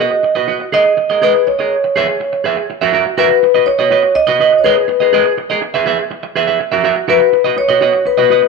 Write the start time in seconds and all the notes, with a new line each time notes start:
0.00 F#4 B4 D#5
0.12 muted clean electric guitar stroke
0.23 muted clean electric guitar stroke
0.35 F#4 B4 D#5
0.48 F#4 B4 D#5
0.60 muted clean electric guitar stroke
0.72 G#4 A#4 D#5
0.85 muted clean electric guitar stroke
0.97 muted clean electric guitar stroke
1.10 G#4 A#4 D#5
1.22 G#4 A#4 B4 D#5
1.35 muted clean electric guitar stroke
1.47 C#5, muted clean electric guitar stroke
1.59 G#4 A#4 D#5
1.84 muted clean electric guitar stroke
1.96 G#4 B4 E5
2.08 muted clean electric guitar stroke
2.20 muted clean electric guitar stroke
2.33 muted clean electric guitar stroke
2.44 G#4 B4 E5
2.57 muted clean electric guitar stroke
2.70 muted clean electric guitar stroke
2.81 F#4 A#4 E5
2.93 F#4 A#4 E5
3.06 muted clean electric guitar stroke
3.18 F#4 A#4 B4 E5
3.31 muted clean electric guitar stroke
3.43 muted clean electric guitar stroke
3.55 F#4 B4 D#5
3.66 C#5, muted clean electric guitar stroke
3.79 F#4 B4 D#5
3.91 F#4 B4 D#5
4.03 muted clean electric guitar stroke
4.15 D#5, muted clean electric guitar stroke
4.27 F#4 B4 D#5
4.40 F#4 B4 D#5
4.53 muted clean electric guitar stroke
4.58 C#5
4.64 G#4 A#4 B4 D#5
4.77 muted clean electric guitar stroke
4.88 muted clean electric guitar stroke
5.00 G#4 A#4 D#5
5.13 G#4 A#4 D#5
5.26 muted clean electric guitar stroke
5.38 muted clean electric guitar stroke
5.50 G#4 A#4 D#5
5.62 muted clean electric guitar stroke
5.74 G#4 B4 E5
5.86 G#4 B4 E5
5.99 muted clean electric guitar stroke
6.11 muted clean electric guitar stroke
6.23 muted clean electric guitar stroke
6.36 G#4 B4 E5
6.47 G#4 B4 E5
6.60 muted clean electric guitar stroke
6.72 F#4 A#4 E5
6.84 F#4 A#4 E5
6.96 muted clean electric guitar stroke
7.08 F#4 A#4 B4 E5
7.20 muted clean electric guitar stroke
7.33 muted clean electric guitar stroke
7.44 F#4 B4 D#5
7.57 C#5, muted clean electric guitar stroke
7.69 F#4 B4 D#5
7.81 F#4 B4 D#5
7.93 muted clean electric guitar stroke
8.05 B4, muted clean electric guitar stroke
8.18 F#4 B4 D#5
8.30 F#4 B4 D#5
8.42 muted clean electric guitar stroke